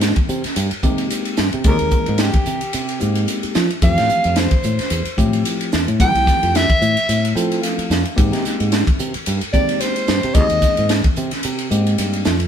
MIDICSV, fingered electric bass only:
0, 0, Header, 1, 3, 480
1, 0, Start_track
1, 0, Tempo, 543971
1, 1457, Time_signature, 4, 2, 24, 8
1, 11010, End_track
2, 0, Start_track
2, 0, Title_t, "Fingered electric bass"
2, 0, Program_c, 0, 33
2, 0, Note_on_c, 0, 44, 76
2, 118, Note_off_c, 0, 44, 0
2, 257, Note_on_c, 0, 48, 78
2, 372, Note_off_c, 0, 48, 0
2, 498, Note_on_c, 0, 43, 93
2, 612, Note_off_c, 0, 43, 0
2, 735, Note_on_c, 0, 48, 80
2, 943, Note_off_c, 0, 48, 0
2, 1223, Note_on_c, 0, 43, 81
2, 1335, Note_off_c, 0, 43, 0
2, 1358, Note_on_c, 0, 48, 79
2, 1455, Note_on_c, 0, 39, 90
2, 1468, Note_off_c, 0, 48, 0
2, 1571, Note_off_c, 0, 39, 0
2, 1597, Note_on_c, 0, 39, 78
2, 1686, Note_off_c, 0, 39, 0
2, 1839, Note_on_c, 0, 44, 81
2, 2042, Note_off_c, 0, 44, 0
2, 2178, Note_on_c, 0, 48, 80
2, 2293, Note_off_c, 0, 48, 0
2, 2420, Note_on_c, 0, 48, 82
2, 2626, Note_off_c, 0, 48, 0
2, 2664, Note_on_c, 0, 44, 81
2, 2868, Note_off_c, 0, 44, 0
2, 3140, Note_on_c, 0, 53, 82
2, 3254, Note_off_c, 0, 53, 0
2, 3373, Note_on_c, 0, 41, 98
2, 3490, Note_off_c, 0, 41, 0
2, 3511, Note_on_c, 0, 45, 89
2, 3603, Note_off_c, 0, 45, 0
2, 3751, Note_on_c, 0, 41, 79
2, 3958, Note_off_c, 0, 41, 0
2, 4100, Note_on_c, 0, 45, 77
2, 4214, Note_off_c, 0, 45, 0
2, 4330, Note_on_c, 0, 40, 92
2, 4449, Note_off_c, 0, 40, 0
2, 4574, Note_on_c, 0, 45, 87
2, 4782, Note_off_c, 0, 45, 0
2, 5061, Note_on_c, 0, 40, 82
2, 5175, Note_off_c, 0, 40, 0
2, 5187, Note_on_c, 0, 45, 81
2, 5295, Note_on_c, 0, 36, 91
2, 5308, Note_off_c, 0, 45, 0
2, 5411, Note_off_c, 0, 36, 0
2, 5426, Note_on_c, 0, 36, 79
2, 5520, Note_off_c, 0, 36, 0
2, 5673, Note_on_c, 0, 41, 74
2, 5879, Note_off_c, 0, 41, 0
2, 6015, Note_on_c, 0, 45, 93
2, 6131, Note_off_c, 0, 45, 0
2, 6256, Note_on_c, 0, 45, 88
2, 6463, Note_off_c, 0, 45, 0
2, 6490, Note_on_c, 0, 53, 83
2, 6700, Note_off_c, 0, 53, 0
2, 6972, Note_on_c, 0, 41, 78
2, 7089, Note_off_c, 0, 41, 0
2, 7218, Note_on_c, 0, 44, 107
2, 7332, Note_off_c, 0, 44, 0
2, 7343, Note_on_c, 0, 48, 93
2, 7437, Note_off_c, 0, 48, 0
2, 7592, Note_on_c, 0, 44, 83
2, 7798, Note_off_c, 0, 44, 0
2, 7939, Note_on_c, 0, 48, 78
2, 8053, Note_off_c, 0, 48, 0
2, 8182, Note_on_c, 0, 43, 90
2, 8294, Note_off_c, 0, 43, 0
2, 8415, Note_on_c, 0, 48, 82
2, 8622, Note_off_c, 0, 48, 0
2, 8901, Note_on_c, 0, 43, 82
2, 9014, Note_off_c, 0, 43, 0
2, 9037, Note_on_c, 0, 48, 84
2, 9133, Note_on_c, 0, 39, 92
2, 9146, Note_off_c, 0, 48, 0
2, 9249, Note_off_c, 0, 39, 0
2, 9273, Note_on_c, 0, 39, 81
2, 9363, Note_off_c, 0, 39, 0
2, 9515, Note_on_c, 0, 44, 79
2, 9719, Note_off_c, 0, 44, 0
2, 9860, Note_on_c, 0, 48, 83
2, 9973, Note_off_c, 0, 48, 0
2, 10101, Note_on_c, 0, 48, 81
2, 10305, Note_off_c, 0, 48, 0
2, 10333, Note_on_c, 0, 44, 83
2, 10540, Note_off_c, 0, 44, 0
2, 10577, Note_on_c, 0, 43, 73
2, 10792, Note_off_c, 0, 43, 0
2, 10819, Note_on_c, 0, 41, 78
2, 11010, Note_off_c, 0, 41, 0
2, 11010, End_track
3, 0, Start_track
3, 0, Title_t, "Muted fingered electric bass strokes"
3, 146, Note_on_c, 9, 29, 35
3, 234, Note_off_c, 9, 29, 0
3, 394, Note_on_c, 9, 29, 34
3, 482, Note_off_c, 9, 29, 0
3, 635, Note_on_c, 9, 29, 35
3, 723, Note_off_c, 9, 29, 0
3, 3033, Note_on_c, 9, 29, 34
3, 3121, Note_off_c, 9, 29, 0
3, 4231, Note_on_c, 9, 29, 33
3, 4319, Note_off_c, 9, 29, 0
3, 4469, Note_on_c, 9, 29, 36
3, 4557, Note_off_c, 9, 29, 0
3, 5908, Note_on_c, 9, 29, 36
3, 5996, Note_off_c, 9, 29, 0
3, 6867, Note_on_c, 9, 29, 38
3, 6955, Note_off_c, 9, 29, 0
3, 7829, Note_on_c, 9, 29, 35
3, 7917, Note_off_c, 9, 29, 0
3, 8077, Note_on_c, 9, 29, 36
3, 8165, Note_off_c, 9, 29, 0
3, 8320, Note_on_c, 9, 29, 33
3, 8408, Note_off_c, 9, 29, 0
3, 11010, End_track
0, 0, End_of_file